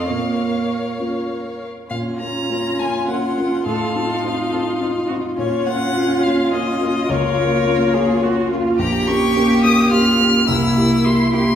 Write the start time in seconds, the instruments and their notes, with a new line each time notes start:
Already playing: grand piano F2 A3 D#4 F4, cello C4, violin F5
0.09 grand piano A#2, cello A#3, viola A#4, violin C#5
0.99 grand piano A#3 C#4 F4
1.90 grand piano A#2, viola C#4, violin F4 F5
2.20 grand piano A#3 C#4 F4, violin A#5
2.50 grand piano A#3 C#4 F4
2.79 grand piano A#3 C#4 F4, cello F4, violin G#5
3.08 grand piano A#3 C#4 F4, violin F#5
3.37 grand piano A#3 C#4 F4
3.65 grand piano A2, viola D#4, cello A4, violin F5
3.93 grand piano C4 D#4 F4, cello A4
4.23 grand piano C4 D#4 F4, cello F4
4.52 grand piano C4 D#4 F4, cello A4
4.80 grand piano C4 D#4 F4, cello F4
5.08 grand piano C4 D#4 F4, cello F#4
5.37 grand piano A#2, viola C#4, cello F4, violin F4 C#5
5.66 grand piano A#3 C#4 F4, violin F#5
5.96 grand piano A#3 C#4 F4
6.23 grand piano A#3 C#4 F4, violin F5
6.52 grand piano A#3 C#4 F4, violin D#5
6.81 grand piano A#3 C#4 F4
7.09 grand piano C#2, viola A#3, cello A#4, violin C#5
7.37 grand piano A#3 C#4 F4
7.66 grand piano A#3 C#4 F4
7.94 grand piano A#3 C#4 F4, cello G#4
8.23 grand piano A#3 C#4 F4, cello F#4
8.51 grand piano A#3 C#4 F4, cello F4
8.78 grand piano A#1, viola A#3, violin G4 A#5, cello G4
9.07 grand piano A#3 C#4 G4, violin C#6
9.36 grand piano A#3 C#4 G4
9.64 grand piano A#3 C#4 G4, violin D#6
9.91 grand piano A#3 C#4 G4, violin F4 F6
10.20 grand piano A#3 C#4 G4
10.48 grand piano C2, viola A#3, violin E4 E6, cello E4
10.76 grand piano A#3 E4 G4
11.04 grand piano A#3 E4 G4, violin C6
11.33 grand piano A#3 E4 G4, viola A#3, violin E4 C6, cello G4